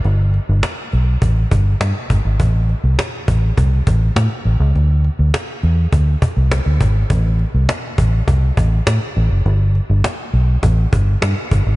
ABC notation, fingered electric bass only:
X:1
M:4/4
L:1/16
Q:1/4=102
K:Am
V:1 name="Fingered electric bass" clef=bass
G,,,3 G,,, z2 B,,,2 A,,,2 G,,,2 G,, z G,,, ^G,,, | A,,,3 C,, z2 A,,,2 C,,2 A,,,2 A,, z A,,, ^C,, | D,,3 D,, z2 E,,2 D,,2 z C,,2 D,, ^G,,,2 | A,,,3 C,, z2 A,,,2 C,,2 A,,,2 A,, z A,,, ^F,,, |
G,,,3 G,,, z2 B,,,2 A,,,2 G,,,2 G,, z G,,, ^G,,, |]